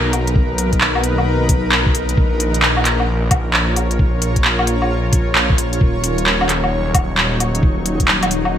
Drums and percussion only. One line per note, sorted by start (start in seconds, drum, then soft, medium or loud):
0.13 open hi-hat medium
0.13 low woodblock soft
0.27 closed hi-hat soft
0.36 kick loud
0.58 open hi-hat medium
0.73 kick medium
0.73 closed hi-hat soft
0.81 clap loud
0.95 low woodblock medium
1.04 open hi-hat medium
1.18 low woodblock soft
1.49 kick loud
1.49 open hi-hat medium
1.72 clap loud
1.86 kick loud
1.95 open hi-hat medium
2.09 closed hi-hat soft
2.17 kick loud
2.40 open hi-hat medium
2.54 closed hi-hat soft
2.62 clap loud
2.77 low woodblock medium
2.85 clap medium
2.85 open hi-hat medium
3.00 low woodblock soft
3.31 kick loud
3.31 open hi-hat medium
3.31 low woodblock medium
3.54 clap loud
3.76 open hi-hat medium
3.76 low woodblock soft
3.91 closed hi-hat soft
3.99 kick loud
4.22 open hi-hat medium
4.36 kick medium
4.36 closed hi-hat soft
4.45 clap loud
4.59 low woodblock medium
4.67 open hi-hat medium
4.82 low woodblock medium
5.13 kick loud
5.13 open hi-hat medium
5.35 clap loud
5.50 kick loud
5.58 open hi-hat medium
5.73 closed hi-hat soft
5.81 kick loud
6.04 open hi-hat medium
6.18 closed hi-hat soft
6.26 clap loud
6.41 low woodblock medium
6.49 clap medium
6.49 open hi-hat medium
6.64 low woodblock medium
6.95 kick loud
6.95 open hi-hat medium
6.95 low woodblock medium
7.18 clap loud
7.40 open hi-hat medium
7.40 low woodblock soft
7.55 closed hi-hat soft
7.63 kick loud
7.86 open hi-hat medium
8.00 kick medium
8.00 closed hi-hat soft
8.08 clap loud
8.23 closed hi-hat soft
8.23 low woodblock medium
8.31 open hi-hat medium
8.45 low woodblock medium